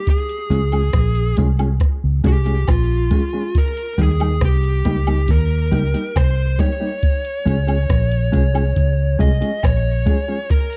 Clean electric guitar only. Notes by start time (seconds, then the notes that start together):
0.50 G#3 C#4 F4 G#4
0.72 G#3 C#4 F4 G#4
1.37 G#3 C#4 F4 G#4
1.59 G#3 C#4 F4 G#4
2.24 G#3 C#4 F4 G#4
2.46 G#3 C#4 F4 G#4
3.11 G#3 C#4 F4 G#4
3.33 G#3 C#4 F4 G#4
3.98 G3 A#3 D#4 G4
4.20 G3 A#3 D#4 G4
4.85 G3 A#3 D#4 G4
5.07 G3 A#3 D#4 G4
5.71 G3 A#3 D#4 G4
5.94 G3 A#3 D#4 G4
6.59 G3 A#3 D#4 G4
6.80 G3 A#3 D#4 G4
7.45 G#3 C#4 F4 G#4
7.67 G#3 C#4 F4 G#4
8.32 G#3 C#4 F4 G#4
8.54 G#3 C#4 F4 G#4
9.19 G#3 C#4 F4 G#4
9.41 G#3 C#4 F4 G#4
10.06 G#3 C#4 F4 G#4
10.28 G#3 C#4 F4 G#4